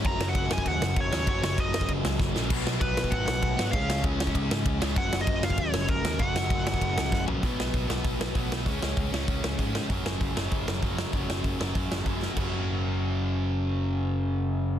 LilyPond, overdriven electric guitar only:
\new Staff \with { instrumentName = "Overdriven electric guitar" } { \clef bass \time 4/4 \key b \lydian \tempo 4 = 195 <fis, cis fis>2.~ <fis, cis fis>8 <fis, cis fis>8 | <fis, cis fis>2.~ <fis, cis fis>8 <fis, cis fis>8 | <b, fis b>2.~ <b, fis b>8 <b, fis b>8 | <cis gis cis'>2.~ <cis gis cis'>8 <cis gis cis'>8 |
<fis, cis fis>2.~ <fis, cis fis>8 <fis, cis fis>8 | <fis, cis fis>2.~ <fis, cis fis>8 <fis, cis fis>8 | <b, fis b>4. <b, fis b>4. <b, fis b>4 | <cis gis cis'>4. <cis gis cis'>4. <cis gis cis'>4 |
<fis, cis fis>4. <fis, cis fis>4. <fis, cis fis>4 | <fis, cis fis>4. <fis, cis fis>4. <fis, cis fis>4 | <fis, cis fis>1~ | <fis, cis fis>1 | }